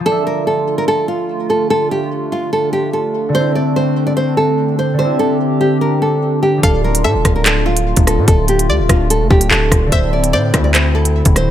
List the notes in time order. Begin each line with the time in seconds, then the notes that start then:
0.00 F3
0.06 D3 A3 D4 F4 A4
0.11 E5
0.27 A#4
0.47 A4
0.78 A#4
0.88 A4
1.08 F4
1.50 A4
1.70 A4
1.91 G4
2.32 F4
2.53 A4
2.73 G4
2.93 A4
3.29 D3 A3
3.35 A3 C4 C5
3.40 E4
3.55 D5
3.76 C5
4.07 D5
4.17 C5
4.37 A4
4.79 C5
4.94 D3 G3
4.99 C4 G4 C5
5.05 E4
5.19 A4
5.61 G4
5.81 A#4
6.02 A4
6.43 G4
6.58 F3
6.63 D1 A3 D4 F4 A4 F5, kick, closed hi-hat
6.69 F4
6.84 A#4
6.95 closed hi-hat
7.04 A2 A4 E5
7.15 D1
7.25 D1, kick, cross-stick, closed hi-hat
7.36 A#4
7.46 A4, clap, closed hi-hat
7.66 F4
7.77 closed hi-hat
7.97 D1, kick, closed hi-hat
8.07 A4, cross-stick, closed hi-hat
8.18 A2
8.28 D1 A4, kick, closed hi-hat
8.48 G4, closed hi-hat
8.59 closed hi-hat
8.69 D2 D5
8.79 D1
8.89 D1 F4, kick, cross-stick, closed hi-hat
9.10 A4, closed hi-hat
9.20 F1
9.30 D1 G4, kick
9.41 closed hi-hat
9.51 D1 A4, clap
9.72 D1, kick, cross-stick, closed hi-hat
9.86 D3 A3
9.92 D1 D3 C4 E4 C5 E5, kick, closed hi-hat
9.98 E4
10.13 D5
10.24 closed hi-hat
10.33 A2 C5 D5
10.54 D2, kick, cross-stick, closed hi-hat
10.64 D5
10.74 C5, clap, closed hi-hat
10.95 A4
11.05 closed hi-hat
11.25 D1, kick, closed hi-hat
11.36 C5, cross-stick, closed hi-hat